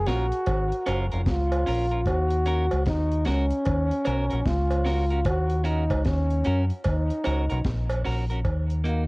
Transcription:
0.06 fingered electric bass A#1, clean electric guitar C#4 F4 A#4, trombone F#4, snare, closed hi-hat
0.32 closed hi-hat
0.46 fingered electric bass G#1, kick, closed hi-hat, cowbell
0.72 closed hi-hat
0.86 fingered electric bass F#1, clean electric guitar C#4 F4 A#4, closed hi-hat, cowbell
1.12 fingered electric bass F1, clean electric guitar C#4 F4 A#4, closed hi-hat
1.26 fingered electric bass C#2, trombone F4, kick, snare, closed hi-hat
1.52 closed hi-hat, cowbell
1.66 fingered electric bass A#1, clean electric guitar C#4 F4 A#4, open hi-hat
1.91 clean electric guitar C#4 F4 A#4, closed hi-hat
2.06 fingered electric bass D#2, trombone F#4, kick, closed hi-hat, cowbell
2.31 closed hi-hat
2.46 clean electric guitar C#4 F#4 A#4, closed hi-hat
2.71 fingered electric bass C#2, closed hi-hat, cowbell
2.86 fingered electric bass D#2, trombone D#4, kick, snare, closed hi-hat
3.12 closed hi-hat
3.25 fingered electric bass C#2, clean electric guitar C#4 F#4 A#4, trombone C#4, snare, closed hi-hat
3.50 closed hi-hat
3.65 fingered electric bass D#2, kick, closed hi-hat, cowbell
3.91 closed hi-hat
4.05 fingered electric bass B1, clean electric guitar C#4 F#4 A#4, closed hi-hat, cowbell
4.30 fingered electric bass A#1, clean electric guitar C#4 F#4 A#4, closed hi-hat
4.45 fingered electric bass C#2, trombone F4, kick, snare, closed hi-hat
4.70 closed hi-hat, cowbell
4.84 clean electric guitar C#4 F#4 A#4, snare, open hi-hat
5.10 clean electric guitar C#4 F#4 A#4, closed hi-hat
5.25 fingered electric bass D#2, trombone F#4, kick, closed hi-hat, cowbell
5.50 closed hi-hat
5.64 clean electric guitar C#4 F#4 A#4, trombone D#4, closed hi-hat
5.90 fingered electric bass C#2, kick, closed hi-hat, cowbell
6.05 fingered electric bass D#2, trombone C#4, kick, snare, closed hi-hat
6.30 closed hi-hat
6.44 fingered electric bass F#2, clean electric guitar C#4 F#4 A#4, closed hi-hat
6.70 closed hi-hat
6.84 fingered electric bass D#2, trombone D#4, kick, closed hi-hat, cowbell
7.10 closed hi-hat
7.24 fingered electric bass C#2, clean electric guitar C#4 F#4 A#4, closed hi-hat, cowbell
7.50 fingered electric bass B1, clean electric guitar C#4 F#4 A#4, closed hi-hat
7.65 fingered electric bass A#1, kick, snare, closed hi-hat
7.90 closed hi-hat, cowbell
8.05 fingered electric bass A#1, clean electric guitar C#4 F#4 A#4, open hi-hat
8.30 clean electric guitar C#4 F#4 A#4, closed hi-hat
8.45 fingered electric bass D#2, kick, closed hi-hat, cowbell
8.70 closed hi-hat
8.84 clean electric guitar A#3 D#4 F#4, trombone A#3, closed hi-hat

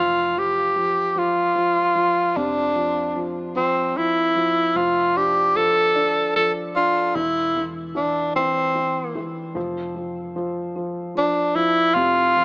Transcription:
Already playing: fingered electric bass F1, grand piano F3
0.00 tenor saxophone F4
0.36 grand piano F3, tenor saxophone G4
0.76 grand piano F3
1.16 grand piano F3, tenor saxophone F4
1.55 grand piano F3
1.95 grand piano F3
2.36 fingered electric bass F1, grand piano C3, tenor saxophone D4
2.75 grand piano F3
3.16 grand piano F3
3.56 grand piano F3, tenor saxophone C4
3.96 grand piano F3, tenor saxophone E4
4.36 grand piano F3
4.76 fingered electric bass F1, grand piano F3, tenor saxophone F4
5.16 grand piano D4, tenor saxophone G4
5.55 grand piano F3, tenor saxophone A4
5.95 grand piano D4
6.36 grand piano F3, tenor saxophone A4
6.75 grand piano D4, tenor saxophone F4
7.15 fingered electric bass E1, grand piano E3, tenor saxophone E4
7.56 grand piano E3
7.95 grand piano E3, tenor saxophone D4
8.36 grand piano E3, tenor saxophone C4
8.75 grand piano E3
9.15 grand piano E3
9.55 fingered electric bass F1, grand piano F3
9.96 grand piano F3
10.36 grand piano F3
10.76 grand piano F3
11.15 grand piano F3, tenor saxophone D4
11.55 grand piano F3, tenor saxophone E4
11.94 fingered electric bass F1, grand piano C3, tenor saxophone F4
12.36 grand piano F3

